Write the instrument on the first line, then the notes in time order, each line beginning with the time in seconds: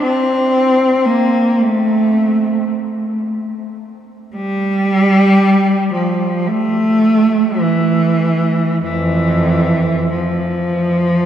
cello
0.02 C4
1.06 A#3
1.61 A3
4.36 G3
5.93 F3
6.48 A3
7.60 E3
8.84 F2 E3
10.14 F3